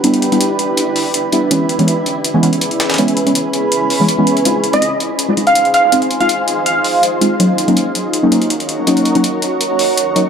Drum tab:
HH |x-x-x-x-x---x---x---o---x---x---|x---x-x-x---x---x---x-x-x-x-x-xx|x-x-x-x-x---x---x---o---x---x-x-|x---x-x-x---x---x---x-x-x-x-x---|
SD |--------------------------------|----------------------------o-oo|--------------------------------|--------------------------------|

HH |x-x-x-x-x---x---x---o---x---x---|x---x-x-x---x---x---x-x-x-x-x---|x-x-x-x-x---x---x---o---x---x---|
SD |--------------------------------|--------------------------------|--------------------------------|